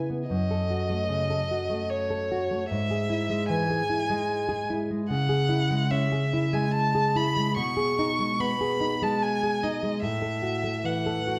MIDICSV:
0, 0, Header, 1, 3, 480
1, 0, Start_track
1, 0, Tempo, 798935
1, 178, Time_signature, 3, 2, 24, 8
1, 3060, Tempo, 825309
1, 6722, End_track
2, 0, Start_track
2, 0, Title_t, "Violin"
2, 0, Program_c, 0, 40
2, 178, Note_on_c, 0, 75, 54
2, 1140, Note_on_c, 0, 73, 48
2, 1149, Note_off_c, 0, 75, 0
2, 1615, Note_off_c, 0, 73, 0
2, 1619, Note_on_c, 0, 76, 56
2, 2088, Note_off_c, 0, 76, 0
2, 2095, Note_on_c, 0, 80, 62
2, 2798, Note_off_c, 0, 80, 0
2, 3063, Note_on_c, 0, 78, 65
2, 3534, Note_on_c, 0, 76, 54
2, 3543, Note_off_c, 0, 78, 0
2, 3898, Note_on_c, 0, 80, 59
2, 3907, Note_off_c, 0, 76, 0
2, 4012, Note_off_c, 0, 80, 0
2, 4016, Note_on_c, 0, 81, 66
2, 4262, Note_on_c, 0, 83, 70
2, 4271, Note_off_c, 0, 81, 0
2, 4501, Note_off_c, 0, 83, 0
2, 4503, Note_on_c, 0, 85, 70
2, 4983, Note_on_c, 0, 83, 64
2, 4992, Note_off_c, 0, 85, 0
2, 5350, Note_on_c, 0, 81, 58
2, 5358, Note_off_c, 0, 83, 0
2, 5461, Note_on_c, 0, 80, 67
2, 5470, Note_off_c, 0, 81, 0
2, 5699, Note_on_c, 0, 75, 58
2, 5708, Note_off_c, 0, 80, 0
2, 5925, Note_off_c, 0, 75, 0
2, 5928, Note_on_c, 0, 76, 62
2, 6411, Note_on_c, 0, 78, 56
2, 6420, Note_off_c, 0, 76, 0
2, 6722, Note_off_c, 0, 78, 0
2, 6722, End_track
3, 0, Start_track
3, 0, Title_t, "Nylon-string guitar"
3, 0, Program_c, 1, 24
3, 0, Note_on_c, 1, 49, 34
3, 0, Note_on_c, 1, 64, 32
3, 59, Note_on_c, 1, 59, 30
3, 133, Note_off_c, 1, 64, 0
3, 153, Note_off_c, 1, 49, 0
3, 178, Note_off_c, 1, 59, 0
3, 181, Note_on_c, 1, 42, 38
3, 305, Note_on_c, 1, 69, 29
3, 424, Note_on_c, 1, 66, 36
3, 494, Note_off_c, 1, 69, 0
3, 540, Note_on_c, 1, 57, 29
3, 613, Note_off_c, 1, 66, 0
3, 654, Note_on_c, 1, 49, 31
3, 731, Note_off_c, 1, 57, 0
3, 783, Note_on_c, 1, 69, 33
3, 848, Note_off_c, 1, 49, 0
3, 908, Note_on_c, 1, 66, 35
3, 973, Note_off_c, 1, 69, 0
3, 1019, Note_on_c, 1, 57, 34
3, 1096, Note_off_c, 1, 66, 0
3, 1264, Note_on_c, 1, 69, 36
3, 1391, Note_on_c, 1, 66, 37
3, 1405, Note_off_c, 1, 57, 0
3, 1454, Note_off_c, 1, 69, 0
3, 1508, Note_on_c, 1, 57, 32
3, 1577, Note_off_c, 1, 66, 0
3, 1597, Note_off_c, 1, 42, 0
3, 1624, Note_off_c, 1, 57, 0
3, 1628, Note_on_c, 1, 44, 45
3, 1747, Note_on_c, 1, 68, 34
3, 1861, Note_on_c, 1, 64, 39
3, 1934, Note_off_c, 1, 68, 0
3, 1980, Note_on_c, 1, 56, 33
3, 2051, Note_off_c, 1, 64, 0
3, 2100, Note_on_c, 1, 52, 34
3, 2171, Note_off_c, 1, 56, 0
3, 2222, Note_on_c, 1, 68, 36
3, 2291, Note_off_c, 1, 52, 0
3, 2342, Note_on_c, 1, 64, 39
3, 2411, Note_off_c, 1, 68, 0
3, 2462, Note_on_c, 1, 56, 38
3, 2530, Note_off_c, 1, 64, 0
3, 2696, Note_on_c, 1, 68, 41
3, 2823, Note_on_c, 1, 64, 41
3, 2840, Note_off_c, 1, 56, 0
3, 2887, Note_off_c, 1, 68, 0
3, 2946, Note_on_c, 1, 56, 36
3, 3013, Note_off_c, 1, 64, 0
3, 3038, Note_off_c, 1, 44, 0
3, 3063, Note_off_c, 1, 56, 0
3, 3066, Note_on_c, 1, 49, 50
3, 3175, Note_on_c, 1, 68, 37
3, 3291, Note_on_c, 1, 64, 44
3, 3370, Note_off_c, 1, 68, 0
3, 3416, Note_on_c, 1, 56, 36
3, 3488, Note_off_c, 1, 64, 0
3, 3536, Note_on_c, 1, 61, 40
3, 3610, Note_off_c, 1, 56, 0
3, 3658, Note_on_c, 1, 68, 41
3, 3729, Note_off_c, 1, 61, 0
3, 3782, Note_on_c, 1, 64, 41
3, 3850, Note_off_c, 1, 68, 0
3, 3896, Note_on_c, 1, 56, 40
3, 3971, Note_off_c, 1, 64, 0
3, 4139, Note_on_c, 1, 68, 42
3, 4260, Note_on_c, 1, 64, 42
3, 4279, Note_off_c, 1, 56, 0
3, 4330, Note_off_c, 1, 68, 0
3, 4381, Note_on_c, 1, 56, 38
3, 4451, Note_off_c, 1, 64, 0
3, 4478, Note_off_c, 1, 49, 0
3, 4496, Note_on_c, 1, 47, 53
3, 4500, Note_off_c, 1, 56, 0
3, 4616, Note_on_c, 1, 68, 40
3, 4744, Note_on_c, 1, 63, 45
3, 4811, Note_off_c, 1, 68, 0
3, 4861, Note_on_c, 1, 56, 40
3, 4934, Note_off_c, 1, 63, 0
3, 4983, Note_on_c, 1, 59, 40
3, 5052, Note_off_c, 1, 56, 0
3, 5104, Note_on_c, 1, 68, 42
3, 5173, Note_off_c, 1, 59, 0
3, 5219, Note_on_c, 1, 63, 41
3, 5294, Note_off_c, 1, 68, 0
3, 5344, Note_on_c, 1, 56, 42
3, 5411, Note_off_c, 1, 63, 0
3, 5583, Note_on_c, 1, 68, 42
3, 5702, Note_on_c, 1, 63, 40
3, 5722, Note_off_c, 1, 56, 0
3, 5769, Note_off_c, 1, 68, 0
3, 5813, Note_on_c, 1, 56, 38
3, 5887, Note_off_c, 1, 63, 0
3, 5907, Note_off_c, 1, 47, 0
3, 5929, Note_on_c, 1, 45, 48
3, 5931, Note_off_c, 1, 56, 0
3, 6042, Note_on_c, 1, 69, 37
3, 6161, Note_on_c, 1, 66, 38
3, 6236, Note_off_c, 1, 69, 0
3, 6284, Note_on_c, 1, 57, 37
3, 6357, Note_off_c, 1, 66, 0
3, 6403, Note_on_c, 1, 52, 33
3, 6481, Note_off_c, 1, 57, 0
3, 6532, Note_on_c, 1, 69, 35
3, 6603, Note_off_c, 1, 52, 0
3, 6654, Note_on_c, 1, 66, 35
3, 6722, Note_off_c, 1, 45, 0
3, 6722, Note_off_c, 1, 66, 0
3, 6722, Note_off_c, 1, 69, 0
3, 6722, End_track
0, 0, End_of_file